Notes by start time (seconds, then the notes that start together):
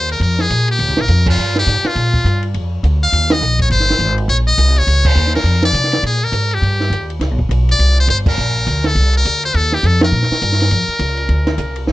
Already playing: D#2
0.09 A#4, ride
0.20 F2 A#4, ride
0.39 G#4, snare
0.50 A#2, hi-hat pedal, ride
0.68 G4, ride
0.79 D#2, ride
0.88 C#2
0.97 A#1, snare
1.01 A#4
1.08 F2, hi-hat pedal, ride
1.26 F4, kick, crash
1.38 G2
1.56 G4, snare
1.67 G#2, hi-hat pedal, ride
1.83 F4, muted upright bass stroke, snare, ride
1.95 A#2, ride
2.14 kick
2.24 G2, hi-hat pedal, ride
2.43 ride
2.54 F2, ride
2.83 D2, hi-hat pedal, ride
3.03 F5
3.12 D#2, ride
3.30 D#5, snare, ride
3.41 A#1, hi-hat pedal
3.59 C#5, kick, ride
3.70 G1 C5, ride
3.80 snare
3.89 snare, ride
3.99 G#1, hi-hat pedal, ride
4.18 ride
4.28 A#1 C#5, ride
4.48 D#5
4.58 C2, hi-hat pedal, ride
4.76 C#5, ride
4.87 C#2, ride
5.05 C5, kick, crash
5.15 D#2, hi-hat pedal
5.27 snare
5.35 A#4, snare, ride
5.44 F2, ride
5.63 D5, snare
5.73 C3, hi-hat pedal, ride
5.84 snare
5.92 snare, ride
6.03 A#2 G#4, ride
6.24 A#4
6.32 G#2, hi-hat pedal, ride
6.51 G4, ride
6.62 G2, ride
6.80 snare
6.90 D#2, hi-hat pedal, ride
7.10 ride
7.20 C#2, snare, ride
7.31 B1
7.39 G1, kick
7.49 B1, hi-hat pedal, ride
7.69 D5, ride
7.79 C2, ride
8.00 C5
8.08 G1 C5, hi-hat pedal, ride
8.26 A#4, kick, crash
8.38 A#1
8.67 D2, hi-hat pedal, ride
8.84 A4, snare, ride
8.95 C2, ride
9.13 A#4, ride
9.25 D2, hi-hat pedal, ride
9.43 C5, ride
9.54 D#2 A4, ride
9.72 G4, snare
9.83 F2 A4, hi-hat pedal, ride
10.01 A#4, snare, ride
10.12 A#2
10.23 snare
10.31 muted upright bass stroke, snare
10.42 G2, hi-hat pedal, ride
10.52 snare
10.60 snare, ride
10.71 F2, ride
10.88 muted upright bass stroke
10.99 C#2, hi-hat pedal, ride
11.17 ride
11.29 D2, ride
11.47 snare, ride
11.58 C2, hi-hat pedal, ride
11.76 ride
11.87 G1, snare